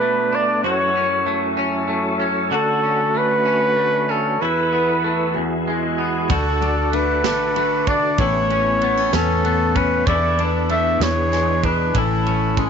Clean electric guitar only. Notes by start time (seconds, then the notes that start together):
Already playing: B2 D4 F#4
0.01 A3
0.33 D4
0.64 F#2 F#4
0.96 C#4
1.26 A3
1.57 C#4
1.88 A3
2.20 C#4
2.51 D3 F#4
2.83 C#4
3.15 A3
3.45 C#4
3.76 A3
4.09 C#4
4.42 E2 E4
4.73 B3
5.04 A3
5.36 E2
5.67 G#3
5.98 B3
6.30 D3 F#4
6.62 D4
6.92 A3
7.25 D4
7.56 A3
7.89 D4
8.20 A2 E4
8.51 C#4
8.83 B3
9.13 C#4
9.44 B3
9.75 C#4
10.07 E2 E4
10.38 D4
10.70 A3
11.00 E2
11.33 G#3
11.64 D4
11.95 A2 E4
12.26 C#4
12.58 G#3